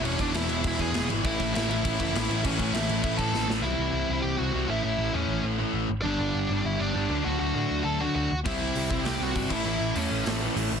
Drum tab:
CC |xxxxxxxx|xxxxxxxx|xxxxxx--|--------|
HH |--------|--------|--------|--------|
SD |--o---o-|--o---o-|--o---oo|--------|
BD |-o--oo--|oo--oo--|oo--oo--|--------|

CC |--------|--------|--------|x------x|
HH |--------|--------|--------|--o-o-o-|
SD |--------|--------|--------|----o---|
BD |--------|--------|--------|o--o--oo|

CC |--------|
HH |--o-o-o-|
SD |----o---|
BD |--------|